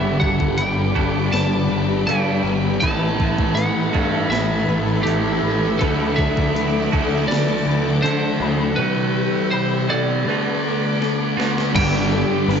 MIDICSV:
0, 0, Header, 1, 8, 480
1, 0, Start_track
1, 0, Key_signature, 1, "major"
1, 0, Tempo, 743494
1, 1829, Time_signature, 4, 2, 24, 8
1, 8135, End_track
2, 0, Start_track
2, 0, Title_t, "String machine"
2, 0, Program_c, 0, 50
2, 0, Note_on_c, 0, 67, 75
2, 0, Note_on_c, 0, 74, 77
2, 0, Note_on_c, 0, 83, 72
2, 0, Note_on_c, 0, 86, 86
2, 1807, Note_off_c, 0, 67, 0
2, 1810, Note_off_c, 0, 86, 0
2, 1811, Note_off_c, 0, 74, 0
2, 1819, Note_on_c, 0, 76, 65
2, 1820, Note_on_c, 0, 81, 88
2, 1823, Note_on_c, 0, 69, 73
2, 3730, Note_off_c, 0, 81, 0
2, 3730, Note_off_c, 0, 83, 0
2, 3740, Note_on_c, 0, 78, 74
2, 3743, Note_on_c, 0, 86, 94
2, 5644, Note_off_c, 0, 76, 0
2, 5645, Note_off_c, 0, 69, 0
2, 5648, Note_off_c, 0, 78, 0
2, 5649, Note_off_c, 0, 86, 0
2, 5669, Note_on_c, 0, 67, 78
2, 5674, Note_on_c, 0, 79, 86
2, 5675, Note_on_c, 0, 83, 66
2, 5677, Note_on_c, 0, 76, 68
2, 6620, Note_off_c, 0, 67, 0
2, 6622, Note_off_c, 0, 79, 0
2, 6624, Note_off_c, 0, 76, 0
2, 6637, Note_on_c, 0, 69, 76
2, 6642, Note_on_c, 0, 86, 85
2, 6645, Note_on_c, 0, 78, 63
2, 7569, Note_off_c, 0, 83, 0
2, 7581, Note_off_c, 0, 69, 0
2, 7583, Note_off_c, 0, 86, 0
2, 7585, Note_off_c, 0, 78, 0
2, 7607, Note_on_c, 0, 74, 77
2, 7610, Note_on_c, 0, 86, 84
2, 7611, Note_on_c, 0, 67, 78
2, 7614, Note_on_c, 0, 83, 80
2, 8135, Note_off_c, 0, 67, 0
2, 8135, Note_off_c, 0, 74, 0
2, 8135, Note_off_c, 0, 83, 0
2, 8135, Note_off_c, 0, 86, 0
2, 8135, End_track
3, 0, Start_track
3, 0, Title_t, "Lead electric guitar"
3, 0, Program_c, 1, 29
3, 0, Note_on_c, 1, 76, 83
3, 125, Note_off_c, 1, 76, 0
3, 128, Note_on_c, 1, 78, 90
3, 369, Note_off_c, 1, 78, 0
3, 372, Note_on_c, 1, 79, 97
3, 853, Note_off_c, 1, 79, 0
3, 855, Note_on_c, 1, 81, 91
3, 1333, Note_off_c, 1, 81, 0
3, 1335, Note_on_c, 1, 79, 100
3, 1807, Note_off_c, 1, 79, 0
3, 1810, Note_on_c, 1, 81, 110
3, 2288, Note_off_c, 1, 81, 0
3, 2291, Note_on_c, 1, 78, 88
3, 2665, Note_off_c, 1, 78, 0
3, 2665, Note_on_c, 1, 76, 88
3, 2775, Note_off_c, 1, 76, 0
3, 2775, Note_on_c, 1, 76, 82
3, 3248, Note_on_c, 1, 67, 78
3, 3279, Note_off_c, 1, 76, 0
3, 3738, Note_on_c, 1, 69, 88
3, 3756, Note_off_c, 1, 67, 0
3, 3976, Note_on_c, 1, 76, 82
3, 3994, Note_off_c, 1, 69, 0
3, 4697, Note_off_c, 1, 76, 0
3, 4700, Note_on_c, 1, 74, 87
3, 5181, Note_on_c, 1, 72, 85
3, 5202, Note_off_c, 1, 74, 0
3, 5653, Note_off_c, 1, 72, 0
3, 5655, Note_on_c, 1, 71, 84
3, 6139, Note_off_c, 1, 71, 0
3, 6141, Note_on_c, 1, 72, 78
3, 6390, Note_on_c, 1, 74, 81
3, 6394, Note_off_c, 1, 72, 0
3, 7083, Note_off_c, 1, 74, 0
3, 7589, Note_on_c, 1, 79, 120
3, 8135, Note_off_c, 1, 79, 0
3, 8135, End_track
4, 0, Start_track
4, 0, Title_t, "Clean electric guitar"
4, 0, Program_c, 2, 27
4, 0, Note_on_c, 2, 71, 86
4, 135, Note_off_c, 2, 71, 0
4, 137, Note_on_c, 2, 69, 53
4, 376, Note_off_c, 2, 69, 0
4, 378, Note_on_c, 2, 71, 76
4, 611, Note_off_c, 2, 71, 0
4, 613, Note_on_c, 2, 69, 68
4, 859, Note_off_c, 2, 69, 0
4, 862, Note_on_c, 2, 71, 81
4, 1094, Note_off_c, 2, 71, 0
4, 1101, Note_on_c, 2, 71, 63
4, 1342, Note_off_c, 2, 71, 0
4, 1345, Note_on_c, 2, 69, 78
4, 1583, Note_off_c, 2, 69, 0
4, 1586, Note_on_c, 2, 71, 75
4, 1820, Note_off_c, 2, 71, 0
4, 1828, Note_on_c, 2, 71, 99
4, 2068, Note_off_c, 2, 71, 0
4, 2070, Note_on_c, 2, 69, 60
4, 2306, Note_off_c, 2, 69, 0
4, 2308, Note_on_c, 2, 71, 82
4, 2542, Note_off_c, 2, 71, 0
4, 2545, Note_on_c, 2, 69, 73
4, 2782, Note_off_c, 2, 69, 0
4, 2785, Note_on_c, 2, 71, 80
4, 3018, Note_off_c, 2, 71, 0
4, 3025, Note_on_c, 2, 71, 71
4, 3264, Note_off_c, 2, 71, 0
4, 3266, Note_on_c, 2, 69, 86
4, 3509, Note_off_c, 2, 69, 0
4, 3511, Note_on_c, 2, 71, 72
4, 3745, Note_off_c, 2, 71, 0
4, 3752, Note_on_c, 2, 71, 96
4, 3989, Note_off_c, 2, 71, 0
4, 3991, Note_on_c, 2, 69, 71
4, 4226, Note_off_c, 2, 69, 0
4, 4228, Note_on_c, 2, 71, 77
4, 4471, Note_off_c, 2, 71, 0
4, 4473, Note_on_c, 2, 69, 72
4, 4714, Note_off_c, 2, 69, 0
4, 4718, Note_on_c, 2, 71, 72
4, 4954, Note_off_c, 2, 71, 0
4, 4962, Note_on_c, 2, 71, 67
4, 5196, Note_off_c, 2, 71, 0
4, 5198, Note_on_c, 2, 69, 84
4, 5433, Note_off_c, 2, 69, 0
4, 5435, Note_on_c, 2, 83, 75
4, 5675, Note_off_c, 2, 83, 0
4, 5675, Note_on_c, 2, 71, 90
4, 5914, Note_off_c, 2, 71, 0
4, 5916, Note_on_c, 2, 69, 65
4, 6153, Note_on_c, 2, 83, 77
4, 6154, Note_off_c, 2, 69, 0
4, 6392, Note_off_c, 2, 83, 0
4, 6394, Note_on_c, 2, 69, 76
4, 6632, Note_off_c, 2, 69, 0
4, 6634, Note_on_c, 2, 71, 78
4, 6861, Note_off_c, 2, 71, 0
4, 6869, Note_on_c, 2, 71, 67
4, 7109, Note_off_c, 2, 71, 0
4, 7112, Note_on_c, 2, 69, 78
4, 7349, Note_off_c, 2, 69, 0
4, 7351, Note_on_c, 2, 71, 73
4, 7579, Note_off_c, 2, 71, 0
4, 7586, Note_on_c, 2, 71, 95
4, 7826, Note_off_c, 2, 71, 0
4, 7826, Note_on_c, 2, 69, 69
4, 8061, Note_on_c, 2, 71, 90
4, 8065, Note_off_c, 2, 69, 0
4, 8135, Note_off_c, 2, 71, 0
4, 8135, End_track
5, 0, Start_track
5, 0, Title_t, "Clean electric guitar"
5, 0, Program_c, 3, 27
5, 0, Note_on_c, 3, 43, 82
5, 0, Note_on_c, 3, 50, 83
5, 0, Note_on_c, 3, 55, 85
5, 0, Note_on_c, 3, 59, 74
5, 0, Note_on_c, 3, 62, 91
5, 0, Note_on_c, 3, 67, 84
5, 603, Note_off_c, 3, 43, 0
5, 606, Note_off_c, 3, 50, 0
5, 607, Note_off_c, 3, 67, 0
5, 610, Note_off_c, 3, 55, 0
5, 610, Note_off_c, 3, 62, 0
5, 615, Note_on_c, 3, 67, 74
5, 618, Note_on_c, 3, 62, 78
5, 626, Note_off_c, 3, 59, 0
5, 629, Note_on_c, 3, 59, 67
5, 630, Note_on_c, 3, 55, 63
5, 633, Note_on_c, 3, 50, 65
5, 641, Note_on_c, 3, 43, 66
5, 1328, Note_off_c, 3, 67, 0
5, 1329, Note_off_c, 3, 43, 0
5, 1330, Note_off_c, 3, 62, 0
5, 1335, Note_off_c, 3, 50, 0
5, 1335, Note_off_c, 3, 55, 0
5, 1335, Note_off_c, 3, 59, 0
5, 1337, Note_on_c, 3, 43, 66
5, 1343, Note_on_c, 3, 50, 63
5, 1346, Note_on_c, 3, 55, 83
5, 1355, Note_on_c, 3, 59, 69
5, 1355, Note_on_c, 3, 62, 84
5, 1359, Note_on_c, 3, 67, 81
5, 1809, Note_off_c, 3, 43, 0
5, 1812, Note_off_c, 3, 50, 0
5, 1814, Note_off_c, 3, 55, 0
5, 1818, Note_off_c, 3, 59, 0
5, 1818, Note_off_c, 3, 62, 0
5, 1820, Note_off_c, 3, 67, 0
5, 1820, Note_on_c, 3, 45, 80
5, 1827, Note_on_c, 3, 52, 86
5, 1831, Note_on_c, 3, 60, 94
5, 1837, Note_on_c, 3, 59, 99
5, 1841, Note_on_c, 3, 64, 86
5, 2532, Note_off_c, 3, 45, 0
5, 2535, Note_off_c, 3, 64, 0
5, 2538, Note_off_c, 3, 60, 0
5, 2538, Note_on_c, 3, 64, 77
5, 2541, Note_off_c, 3, 59, 0
5, 2549, Note_on_c, 3, 59, 78
5, 2552, Note_on_c, 3, 60, 67
5, 2559, Note_off_c, 3, 52, 0
5, 2561, Note_on_c, 3, 52, 61
5, 2564, Note_on_c, 3, 45, 67
5, 3250, Note_off_c, 3, 45, 0
5, 3257, Note_off_c, 3, 59, 0
5, 3258, Note_on_c, 3, 45, 76
5, 3259, Note_off_c, 3, 60, 0
5, 3262, Note_off_c, 3, 52, 0
5, 3264, Note_on_c, 3, 52, 74
5, 3270, Note_on_c, 3, 60, 74
5, 3278, Note_off_c, 3, 64, 0
5, 3278, Note_on_c, 3, 59, 75
5, 3281, Note_on_c, 3, 64, 70
5, 3732, Note_off_c, 3, 45, 0
5, 3738, Note_off_c, 3, 60, 0
5, 3742, Note_off_c, 3, 59, 0
5, 3748, Note_off_c, 3, 52, 0
5, 3748, Note_on_c, 3, 50, 86
5, 3751, Note_on_c, 3, 54, 86
5, 3755, Note_on_c, 3, 57, 86
5, 3766, Note_on_c, 3, 62, 93
5, 3767, Note_off_c, 3, 64, 0
5, 3770, Note_on_c, 3, 64, 96
5, 4457, Note_off_c, 3, 50, 0
5, 4459, Note_off_c, 3, 54, 0
5, 4461, Note_off_c, 3, 57, 0
5, 4462, Note_off_c, 3, 64, 0
5, 4465, Note_off_c, 3, 62, 0
5, 4469, Note_on_c, 3, 64, 77
5, 4472, Note_on_c, 3, 62, 68
5, 4478, Note_on_c, 3, 57, 75
5, 4486, Note_on_c, 3, 54, 68
5, 4489, Note_on_c, 3, 50, 63
5, 5178, Note_off_c, 3, 64, 0
5, 5179, Note_off_c, 3, 62, 0
5, 5182, Note_off_c, 3, 57, 0
5, 5185, Note_off_c, 3, 50, 0
5, 5186, Note_off_c, 3, 54, 0
5, 5192, Note_on_c, 3, 50, 66
5, 5195, Note_on_c, 3, 54, 74
5, 5204, Note_on_c, 3, 57, 71
5, 5211, Note_on_c, 3, 62, 78
5, 5216, Note_on_c, 3, 64, 85
5, 5659, Note_off_c, 3, 50, 0
5, 5660, Note_off_c, 3, 54, 0
5, 5664, Note_off_c, 3, 57, 0
5, 5664, Note_on_c, 3, 48, 88
5, 5668, Note_off_c, 3, 62, 0
5, 5670, Note_off_c, 3, 64, 0
5, 5671, Note_on_c, 3, 52, 91
5, 5681, Note_on_c, 3, 55, 92
5, 5689, Note_on_c, 3, 64, 88
5, 6373, Note_off_c, 3, 48, 0
5, 6377, Note_off_c, 3, 52, 0
5, 6377, Note_off_c, 3, 64, 0
5, 6382, Note_off_c, 3, 55, 0
5, 6385, Note_on_c, 3, 64, 73
5, 6392, Note_on_c, 3, 59, 73
5, 6402, Note_on_c, 3, 55, 65
5, 6404, Note_on_c, 3, 52, 65
5, 6409, Note_on_c, 3, 48, 69
5, 6614, Note_off_c, 3, 64, 0
5, 6617, Note_off_c, 3, 59, 0
5, 6622, Note_off_c, 3, 55, 0
5, 6623, Note_off_c, 3, 52, 0
5, 6626, Note_off_c, 3, 48, 0
5, 6630, Note_on_c, 3, 50, 80
5, 6637, Note_on_c, 3, 57, 86
5, 6646, Note_on_c, 3, 59, 87
5, 6653, Note_on_c, 3, 66, 87
5, 7334, Note_off_c, 3, 50, 0
5, 7334, Note_off_c, 3, 66, 0
5, 7338, Note_off_c, 3, 57, 0
5, 7341, Note_on_c, 3, 66, 77
5, 7342, Note_off_c, 3, 59, 0
5, 7356, Note_on_c, 3, 59, 71
5, 7359, Note_on_c, 3, 57, 63
5, 7367, Note_on_c, 3, 50, 64
5, 7570, Note_off_c, 3, 66, 0
5, 7577, Note_off_c, 3, 59, 0
5, 7579, Note_off_c, 3, 57, 0
5, 7583, Note_off_c, 3, 50, 0
5, 7589, Note_on_c, 3, 43, 79
5, 7596, Note_on_c, 3, 50, 94
5, 7599, Note_on_c, 3, 55, 88
5, 7604, Note_on_c, 3, 59, 94
5, 7607, Note_on_c, 3, 62, 94
5, 7610, Note_on_c, 3, 67, 97
5, 8135, Note_off_c, 3, 43, 0
5, 8135, Note_off_c, 3, 50, 0
5, 8135, Note_off_c, 3, 55, 0
5, 8135, Note_off_c, 3, 59, 0
5, 8135, Note_off_c, 3, 62, 0
5, 8135, Note_off_c, 3, 67, 0
5, 8135, End_track
6, 0, Start_track
6, 0, Title_t, "Distorted electric guitar"
6, 0, Program_c, 4, 30
6, 1836, Note_on_c, 4, 57, 94
6, 2541, Note_off_c, 4, 57, 0
6, 2543, Note_on_c, 4, 57, 72
6, 3254, Note_off_c, 4, 57, 0
6, 3287, Note_on_c, 4, 57, 82
6, 3746, Note_off_c, 4, 57, 0
6, 5686, Note_on_c, 4, 60, 91
6, 6378, Note_off_c, 4, 60, 0
6, 6386, Note_on_c, 4, 60, 70
6, 6614, Note_off_c, 4, 60, 0
6, 6639, Note_on_c, 4, 62, 83
6, 7333, Note_off_c, 4, 62, 0
6, 7341, Note_on_c, 4, 62, 77
6, 7569, Note_off_c, 4, 62, 0
6, 8056, Note_on_c, 4, 43, 82
6, 8064, Note_on_c, 4, 50, 81
6, 8077, Note_on_c, 4, 55, 93
6, 8135, Note_off_c, 4, 43, 0
6, 8135, Note_off_c, 4, 50, 0
6, 8135, Note_off_c, 4, 55, 0
6, 8135, End_track
7, 0, Start_track
7, 0, Title_t, "Picked electric bass"
7, 0, Program_c, 5, 34
7, 0, Note_on_c, 5, 31, 99
7, 113, Note_off_c, 5, 31, 0
7, 137, Note_on_c, 5, 31, 87
7, 351, Note_off_c, 5, 31, 0
7, 371, Note_on_c, 5, 31, 88
7, 588, Note_off_c, 5, 31, 0
7, 617, Note_on_c, 5, 31, 85
7, 832, Note_off_c, 5, 31, 0
7, 861, Note_on_c, 5, 31, 84
7, 1075, Note_off_c, 5, 31, 0
7, 1101, Note_on_c, 5, 31, 81
7, 1315, Note_off_c, 5, 31, 0
7, 1338, Note_on_c, 5, 43, 81
7, 1553, Note_off_c, 5, 43, 0
7, 1574, Note_on_c, 5, 31, 79
7, 1792, Note_off_c, 5, 31, 0
7, 1825, Note_on_c, 5, 33, 90
7, 2038, Note_off_c, 5, 33, 0
7, 2067, Note_on_c, 5, 33, 80
7, 2280, Note_off_c, 5, 33, 0
7, 2296, Note_on_c, 5, 33, 86
7, 2514, Note_off_c, 5, 33, 0
7, 2547, Note_on_c, 5, 43, 93
7, 2760, Note_off_c, 5, 43, 0
7, 2776, Note_on_c, 5, 33, 85
7, 2994, Note_off_c, 5, 33, 0
7, 3018, Note_on_c, 5, 33, 84
7, 3236, Note_off_c, 5, 33, 0
7, 3263, Note_on_c, 5, 33, 75
7, 3479, Note_off_c, 5, 33, 0
7, 3509, Note_on_c, 5, 33, 87
7, 3722, Note_off_c, 5, 33, 0
7, 3753, Note_on_c, 5, 38, 97
7, 3965, Note_off_c, 5, 38, 0
7, 3991, Note_on_c, 5, 38, 77
7, 4203, Note_off_c, 5, 38, 0
7, 4228, Note_on_c, 5, 38, 83
7, 4442, Note_off_c, 5, 38, 0
7, 4479, Note_on_c, 5, 38, 93
7, 4688, Note_off_c, 5, 38, 0
7, 4702, Note_on_c, 5, 38, 85
7, 4918, Note_off_c, 5, 38, 0
7, 4943, Note_on_c, 5, 38, 85
7, 5159, Note_off_c, 5, 38, 0
7, 5186, Note_on_c, 5, 50, 73
7, 5401, Note_off_c, 5, 50, 0
7, 5425, Note_on_c, 5, 38, 85
7, 5640, Note_off_c, 5, 38, 0
7, 7588, Note_on_c, 5, 31, 93
7, 7894, Note_off_c, 5, 31, 0
7, 8060, Note_on_c, 5, 31, 94
7, 8135, Note_off_c, 5, 31, 0
7, 8135, End_track
8, 0, Start_track
8, 0, Title_t, "Drums"
8, 139, Note_on_c, 9, 36, 78
8, 204, Note_off_c, 9, 36, 0
8, 259, Note_on_c, 9, 36, 78
8, 323, Note_off_c, 9, 36, 0
8, 373, Note_on_c, 9, 46, 49
8, 437, Note_off_c, 9, 46, 0
8, 621, Note_on_c, 9, 36, 75
8, 685, Note_off_c, 9, 36, 0
8, 857, Note_on_c, 9, 46, 44
8, 864, Note_on_c, 9, 38, 90
8, 922, Note_off_c, 9, 46, 0
8, 928, Note_off_c, 9, 38, 0
8, 1349, Note_on_c, 9, 46, 45
8, 1414, Note_off_c, 9, 46, 0
8, 1821, Note_on_c, 9, 46, 44
8, 1825, Note_on_c, 9, 36, 97
8, 1886, Note_off_c, 9, 46, 0
8, 1889, Note_off_c, 9, 36, 0
8, 2065, Note_on_c, 9, 36, 74
8, 2130, Note_off_c, 9, 36, 0
8, 2186, Note_on_c, 9, 36, 77
8, 2250, Note_off_c, 9, 36, 0
8, 2306, Note_on_c, 9, 46, 49
8, 2370, Note_off_c, 9, 46, 0
8, 2547, Note_on_c, 9, 36, 78
8, 2612, Note_off_c, 9, 36, 0
8, 2789, Note_on_c, 9, 46, 45
8, 2795, Note_on_c, 9, 38, 96
8, 2853, Note_off_c, 9, 46, 0
8, 2860, Note_off_c, 9, 38, 0
8, 3272, Note_on_c, 9, 46, 47
8, 3337, Note_off_c, 9, 46, 0
8, 3749, Note_on_c, 9, 46, 49
8, 3753, Note_on_c, 9, 36, 97
8, 3814, Note_off_c, 9, 46, 0
8, 3818, Note_off_c, 9, 36, 0
8, 3993, Note_on_c, 9, 36, 78
8, 4058, Note_off_c, 9, 36, 0
8, 4114, Note_on_c, 9, 36, 75
8, 4179, Note_off_c, 9, 36, 0
8, 4238, Note_on_c, 9, 46, 41
8, 4302, Note_off_c, 9, 46, 0
8, 4476, Note_on_c, 9, 36, 81
8, 4540, Note_off_c, 9, 36, 0
8, 4721, Note_on_c, 9, 46, 45
8, 4727, Note_on_c, 9, 38, 99
8, 4785, Note_off_c, 9, 46, 0
8, 4792, Note_off_c, 9, 38, 0
8, 5203, Note_on_c, 9, 46, 45
8, 5267, Note_off_c, 9, 46, 0
8, 7115, Note_on_c, 9, 38, 57
8, 7180, Note_off_c, 9, 38, 0
8, 7359, Note_on_c, 9, 38, 82
8, 7423, Note_off_c, 9, 38, 0
8, 7477, Note_on_c, 9, 38, 73
8, 7542, Note_off_c, 9, 38, 0
8, 7591, Note_on_c, 9, 49, 116
8, 7591, Note_on_c, 9, 57, 55
8, 7593, Note_on_c, 9, 36, 102
8, 7655, Note_off_c, 9, 49, 0
8, 7655, Note_off_c, 9, 57, 0
8, 7658, Note_off_c, 9, 36, 0
8, 7719, Note_on_c, 9, 38, 33
8, 7783, Note_off_c, 9, 38, 0
8, 8074, Note_on_c, 9, 57, 56
8, 8135, Note_off_c, 9, 57, 0
8, 8135, End_track
0, 0, End_of_file